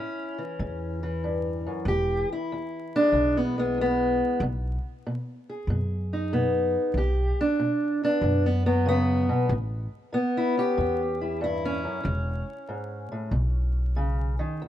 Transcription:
Already playing: A2 C#4 E4
0.38 E3
0.59 E2 A2
1.03 E3
1.24 G2
1.67 F#2
1.85 E1 E2 G4
2.33 E4
2.52 E2
2.96 G#3 D4
3.12 B1 E2
3.37 B3
3.58 G#3 B3
3.78 E2 B3
4.40 B1 B2
5.07 B2
5.49 G#4
5.67 F#2 B2
6.13 D#4
6.33 B2 B3
6.94 B1 B2 G4
7.41 D4
7.59 B2
8.04 B3 D4
8.21 F#2 B2
8.46 B3
8.66 F#3 B3
8.86 C#3 B3
9.29 B2
9.49 A1 A2
10.13 A2 B3
10.37 E4
10.57 C#4 G4
10.77 E2 A2
11.21 E4
11.41 G2 E4
11.65 C#4
11.84 F#2
12.04 E1 E2
12.69 G#2
13.12 A2
13.31 B1 B2
13.96 C#3
14.39 D#3
14.62 E2

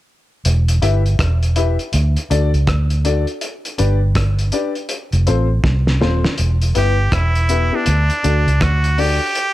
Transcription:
0.45 E1, closed hi-hat
0.68 closed hi-hat
0.82 G1 E4 G4 B4 E5, closed hi-hat
1.06 closed hi-hat
1.19 E1, kick, cross-stick, closed hi-hat
1.43 closed hi-hat
1.56 E4 G4 B4 E5, closed hi-hat
1.79 closed hi-hat
1.93 D2, closed hi-hat
2.17 closed hi-hat
2.30 D2 D4 F#4 A4 D5, closed hi-hat
2.54 C#2, closed hi-hat
2.67 D2, kick, cross-stick, closed hi-hat
2.90 closed hi-hat
3.05 D4 F#4 A4 D5, closed hi-hat
3.27 closed hi-hat
3.41 closed hi-hat
3.65 closed hi-hat
3.78 G1 D4 G4 B4 D5, closed hi-hat
4.15 kick, cross-stick, closed hi-hat
4.39 closed hi-hat
4.52 D4 G4 B4 D5, closed hi-hat
4.75 closed hi-hat
4.89 closed hi-hat
5.13 F1, closed hi-hat
5.27 A1 C4 F4 A4 C5, closed hi-hat
5.64 C2, kick, snare
5.87 snare
6.01 D#1 C4 F4 A4 C5, snare
6.25 snare
6.38 E1, closed hi-hat
6.62 closed hi-hat
6.75 G1 B3 E4 G4 B4, closed hi-hat
7.12 E1 E4, kick, cross-stick, closed hi-hat
7.35 closed hi-hat
7.49 B3 E4 G4 B4, closed hi-hat
7.72 B3 D4 E4 G4 B4
7.86 D2, closed hi-hat
8.10 closed hi-hat
8.23 D2 D4 F#4 A4 D5, closed hi-hat
8.47 C#2, closed hi-hat
8.61 D2 F#4, kick, cross-stick, closed hi-hat
8.84 closed hi-hat
8.98 D4 F#4 G4 A4 D5, open hi-hat
9.35 closed hi-hat

